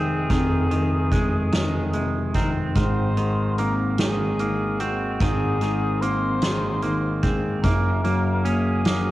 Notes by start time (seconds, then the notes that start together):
Already playing: F1 F2 C3 D#3 G#3 C4 G#4
0.30 F1 F2 D#3, kick, closed hi-hat
0.71 D#3, closed hi-hat
1.12 G#3, kick, closed hi-hat
1.52 D#3, snare, closed hi-hat
1.93 C3 G#3, closed hi-hat
2.34 D#3 C4 A#4, kick, closed hi-hat
2.75 G#1 G#2 D#3 C5, kick, closed hi-hat
3.17 D#3 G#3, closed hi-hat
3.58 A#3 C4 A#4, closed hi-hat
3.98 D#3 G#3 G#4, snare, closed hi-hat
4.39 D#3 A#3, closed hi-hat
4.80 G#3 C4 F#4, closed hi-hat
5.20 G#1 G#2 D#3 G#4, kick, closed hi-hat
5.61 D#3 G#3, snare, closed hi-hat
6.01 A#3 C4 C5, closed hi-hat
6.42 D#3 G#3, snare, closed hi-hat
6.82 D#3 A#3, closed hi-hat
7.23 G#3 C4, kick, closed hi-hat
7.63 F#1 F#2 A#3 A#4, kick, closed hi-hat
8.04 F#3 A#3, closed hi-hat
8.44 A#3 C#4 G#4, closed hi-hat
8.85 F#3 A#3, snare, closed hi-hat